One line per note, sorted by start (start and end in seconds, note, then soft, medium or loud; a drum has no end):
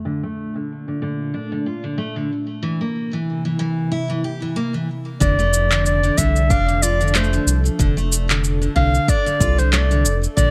0.00 2.59 A3 medium
0.04 2.60 A#2 medium
0.04 0.21 D3 medium
0.04 2.60 D4 medium
0.23 0.54 A3 medium
0.56 0.86 D3 medium
0.88 1.00 D3 medium
1.02 1.33 D3 medium
1.34 1.50 D4 medium
1.52 1.65 D3 medium
1.66 1.82 F4 medium
1.84 1.97 D3 medium
1.98 2.14 A3 medium
2.16 2.30 D3 medium
2.63 5.18 C3 medium
2.63 2.79 E3 medium
2.63 5.18 A#3 medium
2.63 5.18 E4 medium
2.81 3.11 A#3 medium
3.13 3.44 E3 medium
3.45 3.58 E3 medium
3.59 3.90 E3 medium
3.92 4.08 E4 medium
4.10 4.23 E3 medium
4.24 4.40 G4 medium
4.42 4.55 E3 medium
4.56 4.73 A#3 medium
4.74 4.88 E3 medium
5.20 6.11 F1 loud
5.20 5.37 D3 loud
5.20 10.33 F3 medium
5.20 10.33 D4 medium
5.20 10.51 A4 medium
5.20 5.81 D5 loud
5.20 kick loud
5.20 cabasa soft
5.39 5.69 A3 medium
5.39 cabasa soft
5.53 cabasa medium
5.71 6.02 D3 medium
5.71 clap medium
5.71 cabasa soft
5.86 6.19 D5 medium
5.86 cabasa soft
6.03 6.16 D3 medium
6.03 cabasa soft
6.17 6.52 C2 medium
6.17 6.49 D3 loud
6.17 6.51 E5 medium
6.17 kick loud
6.17 cabasa medium
6.36 cabasa soft
6.50 7.40 F1 loud
6.50 6.66 D4 medium
6.50 6.84 F5 loud
6.50 kick loud
6.50 cabasa soft
6.68 6.81 D3 medium
6.68 cabasa soft
6.82 6.99 F4 medium
6.82 7.17 D5 loud
6.82 cabasa medium
7.01 7.13 D3 medium
7.01 cabasa soft
7.08 cabasa soft
7.15 7.31 A3 loud
7.15 7.65 C5 medium
7.15 clap medium
7.15 cabasa soft
7.24 cabasa soft
7.33 7.46 D3 medium
7.33 cabasa soft
7.47 7.70 C2 loud
7.47 cabasa medium
7.66 cabasa soft
7.79 8.69 F1 loud
7.79 7.95 D3 loud
7.79 kick loud
7.79 cabasa soft
7.97 8.28 A3 medium
7.97 cabasa soft
8.12 cabasa medium
8.29 8.60 D3 medium
8.29 clap medium
8.29 cabasa soft
8.44 cabasa soft
8.62 8.74 D3 medium
8.62 cabasa soft
8.76 8.99 C2 medium
8.76 9.07 D3 loud
8.76 9.11 F5 loud
8.76 kick medium
8.95 cabasa soft
9.08 9.24 D4 loud
9.08 9.60 D5 loud
9.08 kick loud
9.08 cabasa soft
9.26 9.39 D3 medium
9.26 cabasa soft
9.40 10.06 C2 medium
9.40 9.57 F4 medium
9.40 kick loud
9.40 cabasa medium
9.58 9.71 D3 medium
9.58 9.72 C5 loud
9.58 cabasa soft
9.73 9.89 A3 loud
9.73 10.19 D5 medium
9.73 clap medium
9.73 cabasa soft
9.91 10.04 D3 medium
9.91 cabasa soft
10.04 10.28 F1 medium
10.04 cabasa medium
10.24 cabasa soft
10.37 10.51 A#1 loud
10.37 10.51 D3 loud
10.37 10.51 D5 loud
10.37 kick loud
10.37 cabasa medium